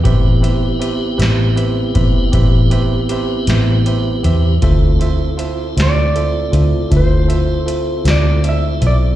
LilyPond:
<<
  \new Staff \with { instrumentName = "Clean electric guitar" } { \time 12/8 \key a \minor \tempo 4. = 52 r1. | r4. d''4. c''4. d''8 e''8 d''8 | }
  \new Staff \with { instrumentName = "Tine electric piano" } { \time 12/8 \key a \minor <g' b' c'' e''>8 <g' b' c'' e''>8 <g' b' c'' e''>8 <g' b' c'' e''>8 <g' b' c'' e''>8 <g' b' c'' e''>8 <g' b' c'' e''>8 <g' b' c'' e''>8 <g' b' c'' e''>8 <g' b' c'' e''>8 <g' b' c'' e''>8 <g' b' c'' e''>8 | <f' a' c'' e''>8 <f' a' c'' e''>8 <f' a' c'' e''>8 <f' a' c'' e''>8 <f' a' c'' e''>8 <f' a' c'' e''>8 <f' a' c'' e''>8 <f' a' c'' e''>8 <f' a' c'' e''>8 <f' a' c'' e''>8 <f' a' c'' e''>8 <f' a' c'' e''>8 | }
  \new Staff \with { instrumentName = "Tonewheel organ" } { \time 12/8 \key a \minor <b c' e' g'>1. | <c' e' f' a'>1. | }
  \new Staff \with { instrumentName = "Fingered electric bass" } { \clef bass \time 12/8 \key a \minor a,,4. a,,4 a,,16 r16 a,,4. a,,4 e,8 | d,4. d,4 d,16 r16 d,4. d,4 b,,8 | }
  \new DrumStaff \with { instrumentName = "Drums" } \drummode { \time 12/8 <hh bd>8 hh8 hh8 <hh sn>8 hh8 <hh bd>8 <hh bd>8 hh8 hh8 <hh sn>8 hh8 hh8 | <hh bd>8 hh8 hh8 <hh sn>8 hh8 hh8 <hh bd>8 hh8 hh8 <hh sn>8 hh8 hh8 | }
>>